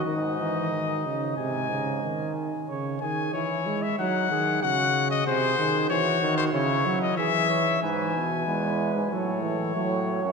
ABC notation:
X:1
M:4/4
L:1/16
Q:1/4=93
K:C#m
V:1 name="Trumpet"
d8 g6 z2 | z2 g2 c3 e f4 f3 d | ^B4 c3 B c3 d e4 | g8 c8 |]
V:2 name="Flugelhorn"
D8 D6 z2 | c2 G2 E4 D2 G2 F4 | G2 G2 F4 E4 G2 c2 | B4 B4 A4 c4 |]
V:3 name="Trombone" clef=bass
D,2 E,2 D,2 C,2 ^B,,2 C,2 D,4 | C,2 D,2 E,2 G,2 F,2 D,2 C,4 | ^B,,2 D,2 E,2 D,2 C,2 F,2 E,4 | E,4 G,4 F,2 E,2 F,4 |]
V:4 name="Euphonium" clef=bass
G,,6 z2 G,,6 z2 | z16 | z16 | G,,2 B,,2 E,,3 G,, A,,4 A,,3 F,, |]